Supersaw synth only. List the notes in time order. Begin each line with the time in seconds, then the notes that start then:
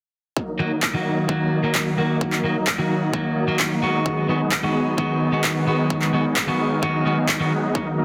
0.37 F#3 A#3 D#4 A#4 D#5
0.60 F#3 A#3 D#4 A#4 D#5
0.94 F#3 A#3 D#4 A#4 D#5
1.29 F#3 A#3 D#4 A#4 D#5
1.63 F#3 A#3 D#4 A#4 D#5
1.87 F#3 A#3 D#4 A#4 F#5
2.10 F#3 A#3 D#4 A#4 D#5
2.21 F#3 A#3 D#4 A#4 D#5
2.44 F#3 A#3 D#4 A#4 D#5
2.79 F#3 A#3 D#4 A#4 D#5
3.13 F#3 A#3 D#4 A#4 D#5
3.48 F#3 A#3 D#4 A#4 D#5
3.71 F#3 A#3 D#4 A#4 F#5
3.94 F#3 A#3 D#4 A#4 D#5
4.06 F#3 B3 D#4 G#4 D#5
4.29 F#3 B3 D#4 G#4 D#5
4.63 F#3 B3 D#4 G#4 D#5
4.98 F#3 B3 D#4 G#4 D#5
5.33 F#3 B3 D#4 G#4 D#5
5.56 F#3 B3 D#4 G#4 F#5
5.79 F#3 B3 D#4 G#4 D#5
5.90 F#3 B3 D#4 G#4 D#5
6.13 F#3 B3 D#4 G#4 D#5
6.48 F#3 B3 D#4 G#4 D#5
6.83 F#3 B3 D#4 G#4 D#5
7.17 F#3 B3 D#4 G#4 D#5
7.40 F#3 B3 D#4 G#4 F#5
7.63 F#3 B3 D#4 G#4 D#5
7.75 F#3 A#3 D#4 A#4 D#5
7.98 F#3 A#3 D#4 A#4 D#5